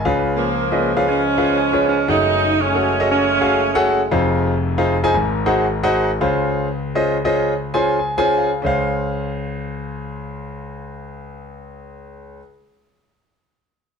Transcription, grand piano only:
0.00 0.20 D#5 medium
0.00 0.19 G#5 medium
0.05 2.05 C#2 medium
0.05 2.05 C#3 medium
0.05 0.47 C#4 medium
0.05 0.47 F4 medium
0.05 0.47 G#4 medium
0.05 0.47 B4 medium
0.05 0.47 F5 medium
0.72 0.90 C#4 medium
0.72 0.89 F4 medium
0.72 0.90 G#4 medium
0.72 0.90 B4 medium
0.72 0.90 D#5 medium
0.96 1.20 C#4 medium
0.96 1.20 F4 medium
0.96 1.20 G#4 medium
0.96 1.20 B4 medium
0.96 1.20 F5 medium
1.38 1.56 C#4 medium
1.38 1.56 F4 medium
1.38 1.56 G#4 medium
1.38 1.56 B4 medium
1.38 1.56 F5 medium
1.73 1.97 C#4 medium
1.73 1.97 F4 medium
1.73 1.97 G#4 medium
1.73 1.97 B4 medium
1.73 1.97 C#5 medium
2.08 4.08 F#1 medium
2.08 4.08 F#2 medium
2.08 2.50 C#4 medium
2.08 2.50 F#4 medium
2.08 2.50 G#4 medium
2.08 2.50 C#5 medium
2.08 2.50 F#5 medium
2.75 2.93 C#4 medium
2.75 2.93 F#4 medium
2.75 2.93 G#4 medium
2.75 2.93 A4 medium
2.75 2.93 F#5 medium
3.00 3.23 C#4 medium
3.00 3.23 F#4 medium
3.00 3.23 G#4 medium
3.00 3.23 A4 medium
3.00 3.23 D#5 medium
3.41 3.59 C#4 medium
3.41 3.59 F#4 medium
3.41 3.59 G#4 medium
3.41 3.59 A4 medium
3.41 3.59 F5 medium
3.75 3.99 C#4 medium
3.75 4.00 F#4 loud
3.75 4.00 G#4 loud
3.75 4.00 A4 medium
3.75 4.00 F#5 loud
4.11 5.10 F1 medium
4.11 5.10 F2 medium
4.11 4.53 D#4 medium
4.11 4.53 F4 medium
4.11 4.53 G#4 medium
4.11 4.53 C5 medium
4.11 4.53 F5 medium
4.78 4.96 D#4 medium
4.78 4.96 F4 medium
4.78 4.96 G#4 medium
4.78 4.96 C5 medium
4.78 4.96 F5 loud
5.03 5.14 D#4 loud
5.03 5.14 F4 medium
5.03 5.14 G#4 medium
5.03 5.14 C5 medium
5.03 5.14 G#5 loud
5.14 6.18 G#1 medium
5.14 6.18 G#2 medium
5.46 5.65 D#4 loud
5.46 5.65 F#4 medium
5.46 5.65 G#4 medium
5.46 5.65 C5 medium
5.46 5.65 F#5 loud
5.83 6.09 D#4 loud
5.83 6.09 F#4 loud
5.83 6.09 G#4 medium
5.83 6.09 C5 medium
5.83 6.09 F#5 loud
6.21 8.60 C#2 medium
6.21 8.60 C#3 medium
6.21 6.67 C#4 medium
6.21 6.67 F4 medium
6.21 6.67 G#4 medium
6.21 6.67 C5 medium
6.21 6.67 F5 medium
6.95 7.16 C#4 medium
6.95 7.16 F4 medium
6.95 7.16 G#4 medium
6.95 7.16 C5 medium
6.95 7.16 D#5 loud
7.25 7.52 C#4 medium
7.25 7.52 F4 medium
7.25 7.52 G#4 medium
7.25 7.52 C5 medium
7.25 7.52 D#5 loud
7.74 7.97 C#4 medium
7.74 7.97 F4 medium
7.74 7.97 G#4 medium
7.74 7.97 C5 medium
7.74 7.96 G#5 loud
7.74 7.97 C6 medium
7.99 8.16 G#5 medium
8.18 8.49 C#4 loud
8.18 8.49 F4 medium
8.18 8.49 G#4 medium
8.18 8.49 C5 medium
8.18 8.49 G#5 loud
8.38 8.62 F5 medium
8.62 12.38 C#2 medium
8.62 12.36 C#4 medium
8.62 12.38 G#4 medium
8.62 12.39 C5 medium
8.66 12.41 F5 medium

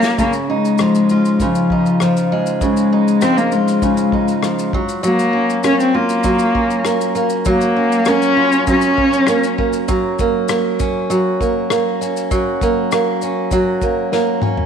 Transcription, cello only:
0.00 0.16 A#3 medium
0.18 0.32 A#3 loud
0.50 1.44 G#3 medium
1.42 2.32 F3 medium
2.61 3.23 G#3 medium
3.22 3.39 C4 loud
3.37 3.54 A#3 medium
3.53 4.74 G#3 medium
5.04 5.61 A#3 medium
5.66 5.79 C#4 loud
5.81 5.97 C4 medium
5.96 7.17 A#3 medium
7.49 8.10 A#3 medium
8.09 8.69 C#4 loud
8.70 9.56 C#4 loud

